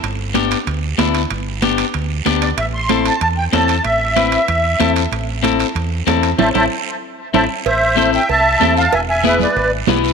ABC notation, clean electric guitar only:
X:1
M:4/4
L:1/8
Q:1/4=189
K:Am
V:1 name="Clean electric guitar"
z2 [B,DG] z3 [B,DE] z | z2 [B,DG] z3 [B,DG] z | z2 [CEA] z3 [CEA] z | z2 [CEB] z3 [CEA] z |
z2 [CEA] z3 [CEA] z | [CEA] [CEA] z4 [CEA] z | z2 [CEA] z3 [CEA] z | z2 [B,E^G] z3 [B,EB] z |]